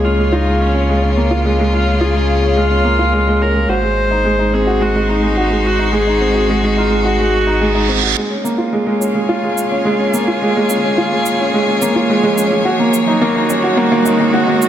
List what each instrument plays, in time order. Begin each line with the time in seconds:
Already playing: sub bass C#2, string quartet C#3 A#3 F4 C#5, grand piano G#3 A#3 C#4 F4
0.04 grand piano C#4, viola F4
0.19 grand piano G#3
0.32 viola D#4, grand piano F4
0.47 grand piano G#3
0.60 viola C#4
0.75 grand piano C#4
0.89 grand piano G#3
1.03 grand piano C#4
1.17 grand piano A#3
1.31 grand piano F4
1.45 grand piano G#3
1.59 grand piano G#3
1.73 grand piano C#4, viola F4
1.87 grand piano G#3
2.01 grand piano F4, viola G#4
2.15 grand piano G#3
2.43 grand piano C#4
2.56 grand piano G#3, viola F4
2.71 grand piano C#4
2.85 grand piano A#3
2.99 grand piano F4
3.13 grand piano G#3
3.27 grand piano G#3
3.41 grand piano C#4, viola A#4
3.55 grand piano G#3
3.69 sub bass G#1, string quartet G#3, grand piano F#4, viola C5
3.83 grand piano G#3
4.04 string quartet D#4
4.11 grand piano D#4
4.25 grand piano G#3
4.39 grand piano D#4
4.53 grand piano C4, string quartet F#4, viola G#4
4.67 grand piano F#4
4.73 string quartet C5
4.81 grand piano G#3, viola F#4
4.96 grand piano G#3
5.09 grand piano D#4, viola D#4
5.23 grand piano G#3
5.37 grand piano F#4
5.51 grand piano G#3
5.66 viola F#4
5.79 grand piano D#4
5.93 grand piano G#3, viola G#4
6.07 grand piano D#4
6.21 grand piano C4
6.35 grand piano F#4
6.49 grand piano G#3
6.63 grand piano G#3
6.77 grand piano D#4, viola F4
6.91 grand piano G#3
7.05 grand piano F#4, viola F#4, reverse cymbal
7.19 grand piano G#3
7.47 grand piano D#4
7.61 grand piano G#3
7.75 grand piano D#4
7.89 grand piano C4
8.03 grand piano F#4
8.16 grand piano G#3, string quartet A#3, riser
8.30 grand piano C#4
8.44 grand piano A#3, shaker
8.58 grand piano F4, string quartet F4
8.73 grand piano G#3
8.86 grand piano G#3, string quartet C#5
9.00 grand piano C#4, shaker
9.09 string quartet G#4
9.15 grand piano G#3
9.29 grand piano F4
9.43 grand piano G#3
9.58 shaker
9.71 grand piano C#4
9.85 grand piano G#3
9.99 grand piano C#4
10.14 grand piano A#3, shaker
10.28 grand piano F4
10.42 grand piano G#3
10.56 grand piano G#3
10.70 grand piano C#4, shaker
10.84 grand piano G#3
10.98 grand piano F4
11.12 grand piano G#3
11.26 shaker
11.40 grand piano C#4
11.54 grand piano G#3
11.67 grand piano C#4
11.82 grand piano A#3, shaker
11.96 grand piano F4
12.09 grand piano G#3
12.23 grand piano G#3
12.38 grand piano C#4, shaker
12.51 grand piano G#3
12.64 string quartet D#3, grand piano F#4
12.79 grand piano A#3
12.94 shaker
13.07 grand piano D#4, string quartet F#4
13.22 grand piano A#3
13.36 grand piano D#4
13.49 grand piano C#4, shaker
13.64 grand piano F#4
13.77 grand piano A#3
13.92 grand piano A#3
14.06 grand piano D#4, shaker
14.20 grand piano A#3
14.34 grand piano F#4
14.48 grand piano A#3
14.62 shaker